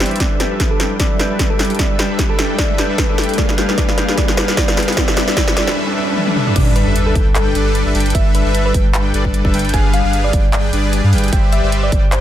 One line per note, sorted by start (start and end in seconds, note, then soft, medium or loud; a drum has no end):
0.00 0.22 E3 medium
0.00 0.18 G3 medium
0.00 0.22 C4 medium
0.00 0.22 D4 medium
0.00 0.18 G4 medium
0.00 0.18 B4 medium
0.00 0.22 B4 medium
0.00 0.13 C5 medium
0.00 0.18 C5 medium
0.00 0.18 D5 medium
0.00 0.18 E5 loud
0.00 0.22 B5 loud
0.00 snare medium
0.00 closed hi-hat soft
0.00 riser medium
0.06 closed hi-hat medium
0.11 closed hi-hat soft
0.16 closed hi-hat medium
0.20 0.48 G3 medium
0.20 0.48 D4 medium
0.20 0.79 E4 medium
0.20 0.48 A4 medium
0.20 0.48 B4 medium
0.20 0.37 D5 medium
0.20 0.48 E5 medium
0.20 kick medium
0.20 snare medium
0.20 closed hi-hat medium
0.40 1.19 G4 medium
0.40 0.65 B4 medium
0.40 snare medium
0.40 closed hi-hat medium
0.51 0.78 G3 medium
0.51 0.78 D4 medium
0.51 0.78 A4 medium
0.51 1.30 B4 medium
0.51 0.78 B4 medium
0.51 0.78 E5 medium
0.60 kick medium
0.60 snare medium
0.60 closed hi-hat medium
0.71 0.95 A4 medium
0.71 1.50 D5 medium
0.80 0.98 G3 medium
0.80 0.98 D4 medium
0.80 0.99 E4 medium
0.80 0.98 A4 medium
0.80 0.98 B4 medium
0.80 0.98 G5 medium
0.80 snare medium
0.80 closed hi-hat medium
1.00 1.28 G3 medium
1.00 1.28 D4 medium
1.00 1.59 E4 medium
1.00 1.28 A4 medium
1.00 1.28 B4 medium
1.00 1.16 D5 medium
1.00 1.28 E5 medium
1.00 kick loud
1.00 snare medium
1.00 closed hi-hat medium
1.19 1.98 G4 medium
1.19 1.44 B4 medium
1.19 snare medium
1.19 closed hi-hat medium
1.30 1.57 G3 medium
1.30 1.57 D4 medium
1.30 1.57 A4 medium
1.30 1.57 B4 medium
1.30 2.09 B4 medium
1.30 1.57 E5 loud
1.39 kick loud
1.39 snare medium
1.39 closed hi-hat medium
1.50 1.74 A4 medium
1.50 2.29 D5 medium
1.59 1.78 G3 medium
1.59 1.78 D4 medium
1.59 1.79 E4 medium
1.59 1.78 A4 medium
1.59 1.78 B4 medium
1.59 1.78 G5 medium
1.59 snare medium
1.59 open hi-hat medium
1.65 closed hi-hat medium
1.70 closed hi-hat soft
1.75 closed hi-hat medium
1.79 2.07 G3 medium
1.79 2.07 D4 medium
1.79 2.38 E4 medium
1.79 2.07 A4 medium
1.79 2.07 B4 medium
1.79 1.96 D5 medium
1.79 2.07 E5 medium
1.79 kick loud
1.79 snare medium
1.79 closed hi-hat medium
1.99 2.78 G4 loud
1.99 2.24 B4 medium
1.99 snare medium
1.99 closed hi-hat medium
2.10 2.36 G3 medium
2.10 2.36 D4 medium
2.10 2.36 A4 medium
2.10 2.89 B4 medium
2.10 2.36 B4 medium
2.10 2.36 E5 medium
2.19 kick loud
2.19 snare medium
2.19 closed hi-hat medium
2.29 2.54 A4 medium
2.29 3.09 D5 medium
2.39 2.57 G3 medium
2.39 2.57 D4 medium
2.39 2.58 E4 medium
2.39 2.57 A4 medium
2.39 2.57 B4 medium
2.39 2.57 G5 medium
2.39 snare medium
2.39 closed hi-hat medium
2.58 2.87 G3 medium
2.58 2.87 D4 medium
2.58 3.18 E4 medium
2.58 2.87 A4 medium
2.58 2.87 B4 medium
2.58 2.75 D5 loud
2.58 2.87 E5 loud
2.58 kick loud
2.58 snare medium
2.58 closed hi-hat medium
2.78 3.57 G4 loud
2.78 3.03 B4 medium
2.78 snare medium
2.78 closed hi-hat medium
2.89 3.16 G3 medium
2.89 3.16 D4 medium
2.89 3.16 A4 medium
2.89 3.68 B4 medium
2.89 3.16 B4 medium
2.89 3.16 E5 loud
2.98 kick loud
2.98 snare medium
2.98 closed hi-hat medium
3.09 3.33 A4 medium
3.09 4.94 D5 medium
3.18 3.37 G3 medium
3.18 3.37 D4 medium
3.18 3.44 E4 medium
3.18 3.37 A4 medium
3.18 3.37 B4 medium
3.18 3.37 G5 medium
3.18 snare medium
3.18 open hi-hat medium
3.24 closed hi-hat medium
3.29 closed hi-hat soft
3.34 closed hi-hat medium
3.38 3.66 G3 medium
3.38 3.66 D4 medium
3.38 3.77 F4 medium
3.38 3.66 G#4 medium
3.38 3.66 B4 medium
3.38 3.55 D5 loud
3.38 3.66 F5 medium
3.38 kick loud
3.38 snare medium
3.38 closed hi-hat medium
3.49 snare medium
3.58 3.97 G4 loud
3.58 3.76 B4 medium
3.58 snare medium
3.58 closed hi-hat medium
3.69 3.76 G3 medium
3.69 3.76 D4 medium
3.69 3.76 G#4 medium
3.69 3.76 B4 medium
3.69 4.08 B4 medium
3.69 3.76 F5 loud
3.69 snare medium
3.78 4.06 G3 medium
3.78 4.06 D4 medium
3.78 4.17 F4 medium
3.78 4.06 G#4 medium
3.78 4.06 B4 medium
3.78 3.94 D5 loud
3.78 4.06 F5 loud
3.78 kick loud
3.78 snare medium
3.78 closed hi-hat medium
3.89 snare medium
3.98 4.37 G4 medium
3.98 4.16 B4 medium
3.98 snare medium
3.98 closed hi-hat medium
4.08 4.16 G3 medium
4.08 4.16 D4 medium
4.08 4.16 G#4 medium
4.08 4.16 B4 medium
4.08 4.48 B4 medium
4.08 4.16 F5 loud
4.08 snare medium
4.17 4.46 G3 medium
4.17 4.46 D4 medium
4.17 4.57 F4 medium
4.17 4.46 G#4 medium
4.17 4.46 B4 medium
4.17 4.34 D5 loud
4.17 4.46 F5 loud
4.17 kick loud
4.17 snare medium
4.17 closed hi-hat medium
4.28 snare medium
4.37 4.77 G4 loud
4.37 4.56 B4 medium
4.37 snare loud
4.37 closed hi-hat medium
4.48 4.56 G3 medium
4.48 4.56 D4 medium
4.48 4.56 G#4 medium
4.48 4.56 B4 medium
4.48 4.88 B4 medium
4.48 4.56 F5 loud
4.48 snare medium
4.57 4.85 G3 medium
4.57 4.85 D4 medium
4.57 5.03 F4 medium
4.57 4.85 G#4 medium
4.57 4.85 B4 medium
4.57 4.74 D5 loud
4.57 4.85 F5 loud
4.57 kick loud
4.57 snare loud
4.57 closed hi-hat medium
4.68 snare medium
4.77 7.13 G4 loud
4.77 4.95 B4 loud
4.77 snare loud
4.77 open hi-hat medium
4.83 closed hi-hat medium
4.88 4.96 G3 medium
4.88 4.96 D4 medium
4.88 4.95 G#4 medium
4.88 4.96 B4 medium
4.88 6.93 B4 medium
4.88 4.95 F5 loud
4.88 snare medium
4.88 closed hi-hat soft
4.92 closed hi-hat medium
4.97 5.15 G3 medium
4.97 5.15 D4 medium
4.97 5.16 E4 medium
4.97 5.15 A4 medium
4.97 5.15 B4 medium
4.97 5.14 D5 loud
4.97 5.15 E5 loud
4.97 kick medium
4.97 snare loud
4.97 closed hi-hat medium
5.08 snare medium
5.17 5.35 G3 medium
5.17 5.35 D4 medium
5.17 5.36 E4 medium
5.17 5.35 A4 medium
5.17 5.35 B4 medium
5.17 5.33 D5 loud
5.17 5.35 E5 loud
5.17 snare loud
5.17 closed hi-hat medium
5.28 snare medium
5.37 5.55 G3 medium
5.37 5.55 D4 medium
5.37 5.56 E4 medium
5.37 5.55 A4 medium
5.37 5.55 B4 medium
5.37 5.53 D5 loud
5.37 5.55 E5 loud
5.37 kick loud
5.37 snare loud
5.37 closed hi-hat medium
5.48 snare medium
5.56 5.75 G3 loud
5.56 5.75 D4 medium
5.56 8.18 E4 medium
5.56 5.75 A4 medium
5.56 5.75 B4 medium
5.56 5.73 D5 loud
5.56 5.75 E5 loud
5.56 snare loud
5.56 closed hi-hat medium
5.68 snare medium
5.76 5.95 G3 medium
5.76 5.95 D4 medium
5.76 5.95 A4 medium
5.76 5.95 B4 medium
5.76 5.95 E5 loud
5.96 6.15 G3 medium
5.96 6.15 D4 medium
5.96 6.15 A4 medium
5.96 6.15 B4 medium
5.96 6.15 E5 loud
6.16 6.35 G3 medium
6.16 6.35 D4 medium
6.16 6.35 A4 medium
6.16 6.35 B4 medium
6.16 6.35 E5 loud
6.16 high tom medium
6.27 high tom medium
6.36 6.54 G3 medium
6.36 6.54 D4 medium
6.36 6.54 A4 medium
6.36 6.54 B4 medium
6.36 6.54 E5 loud
6.36 mid tom medium
6.47 mid tom medium
6.56 6.84 G1 medium
6.56 6.84 G3 medium
6.56 6.84 D4 medium
6.56 6.84 A4 medium
6.56 6.84 B4 medium
6.56 6.73 D5 medium
6.56 6.84 E5 loud
6.56 kick loud
6.56 closed hi-hat medium
6.56 crash loud
6.56 sub drop medium
6.76 7.01 B4 loud
6.76 closed hi-hat medium
6.87 7.14 G1 loud
6.87 7.13 G3 medium
6.87 7.13 D4 medium
6.87 7.13 A4 medium
6.87 7.13 B4 medium
6.87 7.13 E5 loud
6.96 closed hi-hat medium
7.06 7.31 A4 medium
7.15 7.53 G1 loud
7.15 7.53 G3 medium
7.15 7.53 D4 medium
7.15 7.53 A4 medium
7.15 7.53 B4 medium
7.15 7.53 G5 medium
7.15 kick loud
7.15 closed hi-hat medium
7.35 8.08 A4 medium
7.35 clap loud
7.35 closed hi-hat medium
7.55 7.84 G1 loud
7.55 7.83 G3 loud
7.55 7.83 D4 medium
7.55 7.83 A4 medium
7.55 7.83 B4 medium
7.55 7.83 D5 loud
7.55 closed hi-hat medium
7.75 closed hi-hat medium
7.86 7.93 G1 medium
7.86 7.93 G3 medium
7.86 7.93 D4 medium
7.86 7.93 A4 medium
7.86 7.93 B4 medium
7.86 7.93 E5 medium
7.95 8.13 G1 loud
7.95 8.13 G3 medium
7.95 8.13 D4 medium
7.95 8.13 A4 medium
7.95 8.13 B4 medium
7.95 8.13 G5 medium
7.95 open hi-hat medium
8.00 closed hi-hat medium
8.06 closed hi-hat medium
8.10 closed hi-hat medium
8.15 8.43 G1 loud
8.15 8.43 G3 medium
8.15 8.43 D4 medium
8.15 8.43 A4 medium
8.15 8.43 B4 medium
8.15 8.31 E5 loud
8.15 8.43 E5 loud
8.15 kick loud
8.15 closed hi-hat medium
8.35 8.60 B4 loud
8.35 closed hi-hat medium
8.46 8.73 G1 loud
8.46 8.72 G3 medium
8.46 8.72 D4 medium
8.46 8.72 A4 medium
8.46 8.72 B4 medium
8.46 8.72 E5 loud
8.55 closed hi-hat medium
8.66 8.90 B4 loud
8.74 9.12 G1 loud
8.74 9.12 G3 medium
8.74 9.12 D4 medium
8.74 9.12 A4 medium
8.74 9.12 B4 medium
8.74 9.12 G5 medium
8.74 kick loud
8.74 closed hi-hat medium
8.94 9.67 B4 medium
8.94 clap loud
8.94 closed hi-hat medium
9.14 9.43 G1 loud
9.14 9.42 G3 loud
9.14 9.42 D4 medium
9.14 9.42 A4 medium
9.14 9.42 B4 medium
9.14 9.42 D5 loud
9.14 closed hi-hat medium
9.25 kick medium
9.34 closed hi-hat medium
9.45 9.52 G1 loud
9.45 9.52 G3 medium
9.45 9.52 D4 medium
9.45 9.52 A4 medium
9.45 9.52 B4 medium
9.45 9.52 E5 medium
9.45 kick loud
9.54 9.72 G1 loud
9.54 9.72 G3 medium
9.54 9.72 D4 medium
9.54 9.72 A4 medium
9.54 9.72 B4 medium
9.54 9.72 G5 medium
9.54 open hi-hat medium
9.59 closed hi-hat medium
9.65 closed hi-hat medium
9.69 closed hi-hat medium
9.74 10.02 G1 loud
9.74 10.02 G3 medium
9.74 10.02 D4 medium
9.74 10.02 G#4 medium
9.74 10.02 B4 medium
9.74 10.02 F5 loud
9.74 9.90 G#5 loud
9.74 kick loud
9.74 closed hi-hat medium
9.94 10.19 F5 loud
9.94 closed hi-hat medium
10.04 10.32 G1 loud
10.04 10.31 G3 medium
10.04 10.31 D4 medium
10.04 10.31 G#4 medium
10.04 10.31 B4 medium
10.04 10.31 F5 loud
10.13 closed hi-hat medium
10.24 10.48 D5 medium
10.33 10.71 G1 loud
10.33 10.71 G3 medium
10.33 10.71 D4 medium
10.33 10.71 G#4 medium
10.33 10.71 B4 medium
10.33 10.71 G5 medium
10.33 kick loud
10.33 closed hi-hat medium
10.53 11.25 D5 medium
10.53 clap loud
10.53 closed hi-hat medium
10.73 11.02 G1 loud
10.73 11.01 G3 loud
10.73 11.01 D4 medium
10.73 11.01 G#4 medium
10.73 11.01 B4 medium
10.73 11.01 D5 loud
10.73 closed hi-hat medium
10.93 closed hi-hat medium
11.04 11.14 G2 medium
11.04 11.11 G3 medium
11.04 11.11 D4 medium
11.04 11.11 G#4 medium
11.04 11.11 B4 medium
11.04 11.11 F5 medium
11.13 11.31 G1 loud
11.13 11.31 G3 medium
11.13 11.30 D4 medium
11.13 11.31 G#4 medium
11.13 11.31 B4 medium
11.13 11.31 G5 medium
11.13 open hi-hat medium
11.18 closed hi-hat medium
11.24 closed hi-hat medium
11.28 closed hi-hat medium
11.33 11.61 G1 loud
11.33 11.61 G3 medium
11.33 11.61 G4 medium
11.33 11.61 B4 medium
11.33 11.61 C5 medium
11.33 11.61 D5 medium
11.33 11.61 E5 loud
11.33 11.49 G5 loud
11.33 kick loud
11.33 closed hi-hat medium
11.53 11.78 E5 medium
11.53 closed hi-hat medium
11.63 11.90 G1 medium
11.63 11.90 G3 medium
11.63 11.90 G4 medium
11.63 11.90 B4 medium
11.63 11.90 C5 medium
11.63 11.90 D5 medium
11.63 11.90 E5 loud
11.72 closed hi-hat medium
11.83 12.07 D5 loud
11.92 12.21 G1 loud
11.92 12.21 G3 medium
11.92 12.21 G4 medium
11.92 12.21 B4 medium
11.92 12.21 C5 medium
11.92 12.21 D5 medium
11.92 12.21 G5 medium
11.92 kick loud
11.92 closed hi-hat medium
12.12 12.21 C5 medium
12.12 clap loud
12.12 closed hi-hat medium